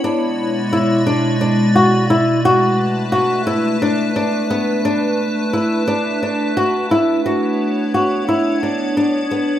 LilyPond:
<<
  \new Staff \with { instrumentName = "Nylon-string guitar" } { \time 7/8 \key b \dorian \tempo 4 = 87 d'4 e'8 d'8 d'8 fis'8 e'8 | fis'4 fis'8 e'8 d'8 d'8 b8 | d'4 e'8 d'8 d'8 fis'8 e'8 | fis'4 fis'8 e'8 d'8 d'8 b8 | }
  \new Staff \with { instrumentName = "Ambient pad" } { \time 7/8 \key b \dorian << { <b, d''>2.~ <b, d''>8 | b'2.~ b'8~ | b'2.~ b'8 | cis''2.~ cis''8 | } \\ { <gis e'>2.~ <gis e'>8 | <a d'>2.~ <a d'>8 | <a d'>2.~ <a d'>8 | <b d'>2.~ <b d'>8 | } >> }
>>